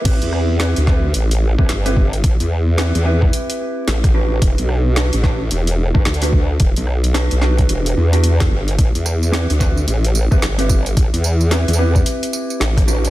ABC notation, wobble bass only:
X:1
M:4/4
L:1/16
Q:"Swing 16ths" 1/4=110
K:Ador
V:1 name="Wobble bass" clef=bass
A,,, E,,4 D,,3 A,,,3 C,, G,,,4 | A,,, E,,4 E,,3 z4 A,,,4 | E,,, B,,,4 A,,,3 E,,,3 G,,, D,,4 | E,,, B,,,4 B,,,3 E,,,2 E,,4 G,,,2 |
A,,, E,,4 D,,3 A,,,3 C,, G,,,4 | A,,, E,,4 E,,3 z4 A,,,4 |]